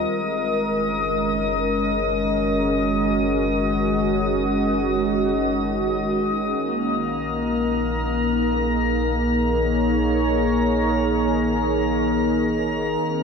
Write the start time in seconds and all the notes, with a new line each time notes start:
Already playing: D#3 G3 C4 F4 A#4 D#5 D#6
0.12 F#1 G#3
0.73 C#4
2.26 F#4
6.58 A#1 A#3 A#4 A#5
7.37 D#4
8.44 G#4
9.50 C#5
13.01 G1 C4